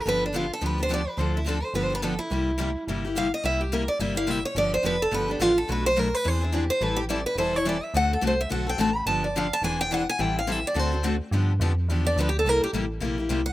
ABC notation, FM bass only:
X:1
M:4/4
L:1/8
Q:"Swing" 1/4=213
K:Gmix
V:1 name="FM bass" clef=bass
G,,,4 D,,4 | D,,4 G,,,4 | C,,4 G,,,4 | C,,4 G,,,4 |
G,,,2 F,,,2 G,,,2 A,,,2 | B,,,4 E,,4 | A,,,4 E,,,4 | D,,2 C,,2 B,,,2 A,,,2 |
G,,,4 E,,,4 | A,,,4 D,,4 | G,,2 F,,2 E,,2 D,,2 | C,, z A,,,2 _B,,,2 C,,2 |]